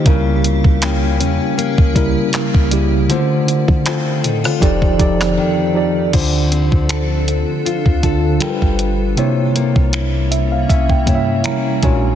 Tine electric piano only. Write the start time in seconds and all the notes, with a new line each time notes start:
0.04 C#3 G3 E4 A#4
1.94 C#3 G3 E4 A#4
2.70 C#3 G3 E4 G4
3.08 D3 A3 F4 C5
4.60 F3 D#4 G4 A4 D5
4.98 F3 D#4 G4 A4 D5
5.74 F3 D#4 G4 A4 D5
6.12 D3 D4 F4 C5
8.02 D3 D4 F4 A4
8.40 G3 F4 A4 A#4
8.49 B4
9.16 C3 A#3 E4 C#5
10.31 E5
10.52 F5
10.69 E5
10.90 G5
11.06 C3 A#3 E4 C#5 G5
11.15 E5
11.45 A#5
11.82 A#2 G#3 D4 F#4 C#5 G#5